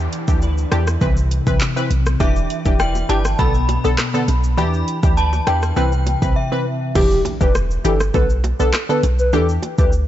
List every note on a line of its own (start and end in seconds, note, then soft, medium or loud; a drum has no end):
0.00 0.24 E3 medium
0.00 2.20 E3 medium
0.00 0.24 D4 medium
0.00 0.25 G4 loud
0.00 0.43 B4 medium
0.00 downlifter medium
0.13 closed hi-hat medium
0.13 shaker medium
0.28 0.66 D2 medium
0.28 0.42 E3 medium
0.28 0.42 D4 medium
0.28 0.42 G4 medium
0.28 kick medium
0.28 shaker medium
0.42 1.08 D4 medium
0.42 2.80 E4 medium
0.42 2.80 B4 medium
0.42 shaker medium
0.58 shaker medium
0.72 0.97 E2 medium
0.72 0.87 E3 medium
0.72 0.87 D4 medium
0.72 0.88 G4 medium
0.72 cross-stick loud
0.72 closed hi-hat medium
0.72 shaker medium
0.87 cross-stick medium
0.87 shaker medium
1.01 1.41 C2 loud
1.01 2.27 C3 medium
1.01 1.17 E3 loud
1.01 1.17 C4 medium
1.01 1.17 B4 loud
1.01 kick loud
1.01 shaker medium
1.17 shaker medium
1.31 closed hi-hat medium
1.31 shaker medium
1.47 1.59 C2 medium
1.47 1.61 E3 medium
1.47 1.61 C4 medium
1.47 1.61 B4 medium
1.47 kick medium
1.47 shaker medium
1.61 clap loud
1.61 shaker medium
1.76 1.90 E3 medium
1.76 1.91 C4 medium
1.76 1.91 B4 medium
1.76 shaker medium
1.91 2.16 B1 loud
1.91 closed hi-hat medium
1.91 shaker medium
2.06 cross-stick medium
2.06 shaker medium
2.20 2.46 E1 loud
2.20 2.62 E3 medium
2.20 3.45 E3 medium
2.20 2.62 D4 medium
2.20 2.62 G4 loud
2.20 2.81 E5 loud
2.20 kick loud
2.20 high bongo medium
2.20 shaker medium
2.36 shaker soft
2.50 closed hi-hat medium
2.50 shaker soft
2.65 3.03 E1 medium
2.65 2.80 E3 medium
2.65 2.80 D4 medium
2.65 2.80 G4 medium
2.65 kick medium
2.65 shaker medium
2.80 4.61 D4 medium
2.80 3.46 E4 medium
2.80 5.18 B4 medium
2.80 3.10 G5 loud
2.80 cross-stick medium
2.80 shaker medium
2.95 high bongo medium
2.95 shaker medium
3.09 3.35 G1 medium
3.09 3.25 E3 medium
3.09 3.25 D4 medium
3.09 3.25 G4 medium
3.09 3.40 A5 loud
3.09 closed hi-hat medium
3.09 shaker medium
3.25 cross-stick medium
3.25 shaker medium
3.39 3.78 B1 loud
3.39 4.64 B2 medium
3.39 3.55 D3 medium
3.39 3.55 B3 medium
3.39 3.55 A4 loud
3.39 4.57 B5 loud
3.39 kick loud
3.39 high bongo medium
3.39 shaker medium
3.54 shaker medium
3.69 closed hi-hat medium
3.69 high bongo medium
3.69 shaker medium
3.84 3.97 B1 medium
3.84 3.98 D3 medium
3.84 3.98 B3 medium
3.84 3.99 A4 medium
3.84 shaker medium
3.98 cross-stick loud
3.98 clap loud
3.98 shaker medium
4.14 4.28 D3 medium
4.14 4.28 B3 medium
4.14 4.28 A4 medium
4.14 shaker medium
4.28 4.59 B1 loud
4.28 closed hi-hat medium
4.28 low bongo medium
4.28 shaker medium
4.44 shaker medium
4.57 4.83 E2 loud
4.57 4.99 E3 loud
4.57 7.52 E3 medium
4.57 4.99 D4 medium
4.57 5.00 G4 loud
4.57 5.13 B5 loud
4.57 high bongo medium
4.57 shaker medium
4.74 shaker soft
4.88 closed hi-hat medium
4.88 shaker soft
5.03 5.41 D2 medium
5.03 5.17 E3 medium
5.03 5.17 D4 medium
5.03 5.17 G4 medium
5.03 kick loud
5.03 shaker medium
5.17 5.83 D4 medium
5.17 7.52 E4 medium
5.17 7.52 B4 medium
5.17 5.48 A5 loud
5.17 shaker medium
5.33 high bongo medium
5.33 shaker medium
5.47 5.73 E2 medium
5.47 5.63 E3 medium
5.47 5.63 D4 medium
5.47 5.63 G4 medium
5.47 5.75 G5 medium
5.47 cross-stick loud
5.47 closed hi-hat medium
5.47 shaker medium
5.63 cross-stick medium
5.63 shaker medium
5.76 6.16 C2 loud
5.76 7.02 C3 medium
5.76 5.92 E3 loud
5.76 5.92 C4 medium
5.76 5.93 B4 loud
5.76 6.38 G5 medium
5.76 high bongo medium
5.76 shaker medium
5.92 shaker medium
6.06 closed hi-hat medium
6.06 high bongo medium
6.06 shaker medium
6.22 6.34 C2 medium
6.22 6.36 E3 medium
6.22 6.36 C4 medium
6.22 6.36 B4 medium
6.22 kick medium
6.22 shaker medium
6.36 6.92 E5 medium
6.52 6.66 E3 medium
6.52 6.66 C4 medium
6.52 6.66 B4 medium
6.95 7.21 E1 loud
6.95 7.37 E3 medium
6.95 7.37 D4 medium
6.95 7.21 G4 loud
6.95 7.37 G4 loud
6.95 kick loud
6.95 crash loud
6.95 impact medium
6.95 high bongo medium
6.95 shaker medium
7.12 shaker soft
7.25 closed hi-hat medium
7.25 high bongo medium
7.25 shaker medium
7.41 7.78 E1 loud
7.41 7.55 E3 medium
7.41 7.55 D4 medium
7.41 7.55 G4 medium
7.41 7.53 B4 medium
7.41 kick loud
7.41 shaker medium
7.55 cross-stick loud
7.55 shaker medium
7.71 shaker medium
7.84 8.10 G1 medium
7.84 8.00 E3 medium
7.84 8.00 D4 medium
7.84 8.00 G4 medium
7.84 7.98 A4 medium
7.84 closed hi-hat medium
7.84 shaker medium
8.00 cross-stick medium
8.00 shaker medium
8.14 8.53 B1 loud
8.14 8.30 D3 loud
8.14 8.30 B3 medium
8.14 8.30 A4 loud
8.14 8.28 B4 medium
8.14 kick loud
8.14 high bongo medium
8.14 shaker medium
8.30 shaker medium
8.44 closed hi-hat medium
8.44 high bongo medium
8.44 shaker medium
8.59 8.72 B1 medium
8.59 8.74 D3 medium
8.59 8.74 B3 medium
8.59 8.72 A4 medium
8.59 8.74 A4 medium
8.59 shaker medium
8.74 cross-stick loud
8.74 clap loud
8.74 shaker medium
8.89 9.03 D3 medium
8.89 9.03 B3 medium
8.89 9.04 A4 medium
8.89 9.01 B4 medium
8.89 shaker medium
9.03 9.35 B1 loud
9.03 closed hi-hat medium
9.03 low bongo medium
9.03 shaker medium
9.19 9.31 B4 medium
9.19 shaker medium
9.33 9.59 E2 loud
9.33 9.75 E3 loud
9.33 9.75 D4 medium
9.33 9.75 G4 loud
9.33 9.46 A4 loud
9.33 high bongo medium
9.33 shaker medium
9.49 shaker soft
9.62 closed hi-hat medium
9.62 high bongo medium
9.62 shaker medium
9.78 10.08 D2 medium
9.78 9.92 E3 medium
9.78 9.93 D4 medium
9.78 9.93 G4 medium
9.78 9.90 B4 medium
9.78 kick medium
9.78 shaker medium
9.92 shaker medium